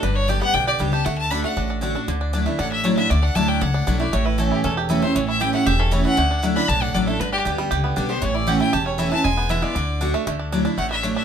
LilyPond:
<<
  \new Staff \with { instrumentName = "Fiddle" } { \time 4/4 \key d \major \tempo 4 = 234 b'8 cis''8 d''8 fis''8 g''8 d''8 r8 a''8 | fis''8 a''8 b''8 fis''4 r4. | r2 fis''8 e''8 cis''8 e''8 | d''8 fis''8 a''8 g''8 fis''4. d''8 |
cis''8 b'8 a'8 g'8 a'8 r4 c''8 | cis''8 e''8 g''8 fis''8 e''8 a'8 cis''8 fis''8~ | fis''4 r8 b''8 a''8 fis''8 d''8 a'8 | b'8 g'8 r2 r8 c''8 |
cis''8 d''8 fis''8 g''8 a''8 cis''8 e''8 a''8 | gis''4 e''8 d''4. r4 | r2 fis''8 e''8 cis''8 e''8 | }
  \new Staff \with { instrumentName = "Five-string banjo" } { \time 4/4 \key d \major d'4 g'8 b8 d'8 g'8 g8 g'8 | a4 d'8 a8 d'8 d'8 d'8 d'8 | d8 d'8 d'8 a8 d'8 d'8 d'8 d8 | a8 d'8 a8 d'8 d'8 d'8 d'8 a8 |
a8 e'8 a8 e'8 cis'8 g'8 e'8 a8 | e8 e'8 g'8 a8 g'8 cis'8 e'8 e8 | a8 d'8 a8 d'8 d'8 d'8 d'8 a8 | d8 d'8 g'8 g8 g'8 b8 d'8 d8 |
e8 e'8 g'8 a8 g'8 cis'8 e'8 e8 | gis8 b8 e'8 gis8 d4 d'8 a8 | a8 d'8 d'8 d'8 a8 d'8 d'8 d'8 | }
  \new Staff \with { instrumentName = "Steel-string acoustic guitar" } { \time 4/4 \key d \major << { r4 <d g b g'>8 <b g'>8 r4 <d g b g'>8 <b g'>8 | r4 <d a d' fis'>8 <d' fis'>8 r4 <d a d' fis'>8 <d' fis'>8 | r4 <fis a d' e'>8 <d' e'>8 r4 <fis a d' e'>8 <d' e'>8 | r4 <fis a d' e'>4 r4 <fis a d' e'>8 <d' e'>8 |
r4 <e a cis' e'>4 r4 <e a cis' e'>8 <cis' e'>8 | r4 <e a cis' e'>8 <cis' e'>8 r4 <e a cis' e'>8 <cis' e'>8 | r4 <fis a d' e'>8 <d' e'>8 r4 <fis a d' e'>8 <d' e'>8 | r4 <d g b g'>8 <b g'>8 r4 <d g b g'>8 <b g'>8 |
r4 <e a cis' e'>8 <cis' e'>8 r4 <e a cis' e'>8 <cis' e'>8 | r4 <e gis b e'>8 <b e'>8 r4 <d a d' fis'>8 <d' fis'>8 | r4 <fis a d' e'>8 <d' e'>8 r4 <fis a d' e'>4 | } \\ { g,2 d2 | d2 a,2 | d2 a,2 | d2 a,2 |
a,2 e,2 | a,2 e,2 | d2 a,2 | g,2 d2 |
a,2 e,2 | e,2 d2 | d2 a,2 | } >> }
  \new Staff \with { instrumentName = "Upright bass" } { \clef bass \time 4/4 \key d \major g,,2 b,,4 cis,4 | d,2 a,,2 | d,2 a,,2 | d,4 d,4 cis,4 b,,4 |
a,,2 e,,2 | a,,2 e,,2 | d,2 b,,4 a,,4 | g,,4 d,4 cis,4 b,,4 |
a,,2 e,,2 | e,,2 d,2 | d,2 a,,2 | }
>>